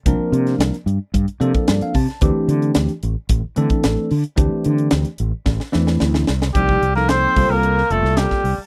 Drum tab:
HH |x-xxxxx-xxxxxxox|x-xxxxx-x-xxx-ox|x-xxxxx---------|x-x-x-o-x-x-x-o-|
SD |---oo-------o--o|----o-------o---|----o---oooooooo|---oo----o-ooo--|
BD |o-------o--o--o-|o-------o--o----|o-------o-------|oo----o------o--|